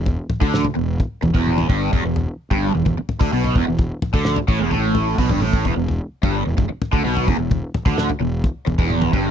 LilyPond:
<<
  \new Staff \with { instrumentName = "Overdriven electric guitar" } { \clef bass \time 4/4 \key e \minor \tempo 4 = 129 e,16 r8 d8 r16 e,8 r8 e,16 e,8. g,8 | e,16 e,8 r8 g,8 e,16 e,16 r8 d16 b,8 e,16 e,16~ | e,16 r8 d8 r16 a,16 e,16 a,4 b,16 g,16 a,8 | e,16 e,8 r8 g,8 e,16 e,16 r8 d16 b,8 e,16 e,16~ |
e,16 r8 d8 r16 e,8 r8 e,16 e,8. g,8 | }
  \new Staff \with { instrumentName = "Fingered electric bass" } { \clef bass \time 4/4 \key e \minor e,,16 r8 d,8 r16 e,,8 r8 e,,16 e,,8. g,,8 | e,,16 e,,8 r8 g,,8 e,,16 e,,16 r8 d,16 b,,8 e,,16 e,,16~ | e,,16 r8 d,8 r16 a,,16 e,,16 a,,4 b,,16 g,,16 a,,8 | e,,16 e,,8 r8 g,,8 e,,16 e,,16 r8 d,16 b,,8 e,,16 e,,16~ |
e,,16 r8 d,8 r16 e,,8 r8 e,,16 e,,8. g,,8 | }
  \new DrumStaff \with { instrumentName = "Drums" } \drummode { \time 4/4 <bd tomfh>8 <tomfh toml>16 bd16 <sn toml>16 tomfh8. <bd tomfh>8 tomfh16 bd16 toml16 <tomfh toml>16 bd8 | <bd tomfh>8 tomfh8 r16 <bd tomfh>8. <bd tomfh>8 tomfh16 bd16 r16 tomfh16 bd8 | <bd tomfh>8 <tomfh toml>16 bd16 <sn toml>16 tomfh16 bd8 tomfh8 tomfh8 <bd toml>16 <tomfh toml>16 tommh16 bd16 | <bd tomfh>8 tomfh8 r16 <bd tomfh>8. <bd tomfh>8 tomfh16 bd16 r16 tomfh16 bd8 |
<bd tomfh>8 <tomfh toml>16 bd16 <sn toml>16 tomfh8. <bd tomfh>8 tomfh16 bd16 toml16 <tomfh toml>16 bd8 | }
>>